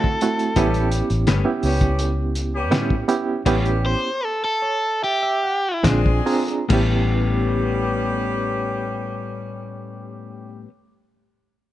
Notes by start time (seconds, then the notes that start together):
Already playing: D3 F#3 A3 C4 E4 F#4 A4
0.04 kick
0.21 A3 C4 E4 F#4, closed hi-hat
0.39 closed hi-hat
0.56 A1 A2 G3 B3 C#4 E4 G4, kick, closed hi-hat
0.74 closed hi-hat
0.92 closed hi-hat
1.10 A1, closed hi-hat
1.27 G1 A2 G3 B3 C#4, snare, closed hi-hat
1.45 B3 C#4 E4 G4
1.63 C#2 G3 B3 C#4 G4, open hi-hat
1.81 kick, closed hi-hat
1.99 closed hi-hat
2.35 closed hi-hat
2.53 G3 B3 C#4 G4
2.71 A2 G3 B3 C#4 E4 G4, snare, closed hi-hat
2.90 kick
3.08 B3 C#4 E4 G4, closed hi-hat
3.46 A1 A2 G3 B3 C#4 E4 G4, kick, closed hi-hat, crash
3.65 closed hi-hat
3.86 C5
4.25 A4
4.44 A4
4.62 C#5
5.02 G4 E5
5.23 E5
5.43 F#5
5.83 A#1 A#2 G#3 C4 D4 F4 G#4 G#5, kick, snare, closed hi-hat
6.06 kick
6.26 C4 D4 F4 G#4 A#5, open hi-hat
6.48 closed hi-hat
6.69 A1 A2 G3 B3 C#4 E4 G4, kick, crash
6.74 C#4 G4